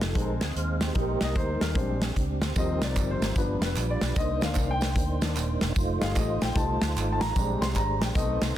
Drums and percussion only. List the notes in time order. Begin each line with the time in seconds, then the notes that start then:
0.01 snare, closed hi-hat
0.15 kick, closed hi-hat
0.41 snare, closed hi-hat
0.56 closed hi-hat
0.81 snare, closed hi-hat
0.95 kick, closed hi-hat
1.21 snare, closed hi-hat
1.36 kick, closed hi-hat
1.61 snare, closed hi-hat
1.75 kick, closed hi-hat
2.02 snare, closed hi-hat
2.16 kick, closed hi-hat
2.42 snare, closed hi-hat
2.56 kick, closed hi-hat, tambourine
2.82 snare, closed hi-hat, tambourine
2.96 kick, clap, closed hi-hat, tambourine
3.22 snare, closed hi-hat, tambourine
3.36 kick, closed hi-hat, tambourine
3.62 snare, closed hi-hat, tambourine
3.76 clap, closed hi-hat, tambourine
4.01 snare, closed hi-hat, tambourine
4.16 kick, closed hi-hat, tambourine
4.41 snare, closed hi-hat, tambourine
4.55 kick, clap, closed hi-hat, tambourine
4.81 snare, closed hi-hat, tambourine
4.96 kick, closed hi-hat, tambourine
5.21 snare, closed hi-hat, tambourine
5.36 clap, closed hi-hat, tambourine
5.61 snare, closed hi-hat, tambourine
5.76 kick, closed hi-hat, tambourine
6.01 snare, closed hi-hat, tambourine
6.16 kick, clap, closed hi-hat, tambourine
6.41 snare, closed hi-hat, tambourine
6.56 kick, closed hi-hat, tambourine
6.82 snare, closed hi-hat, tambourine
6.96 clap, closed hi-hat, tambourine
7.21 snare, closed hi-hat, tambourine
7.36 kick, closed hi-hat, tambourine
7.62 snare, closed hi-hat, tambourine
7.76 kick, clap, closed hi-hat, tambourine
8.02 snare, closed hi-hat, tambourine
8.15 kick, closed hi-hat, tambourine
8.42 snare, closed hi-hat, tambourine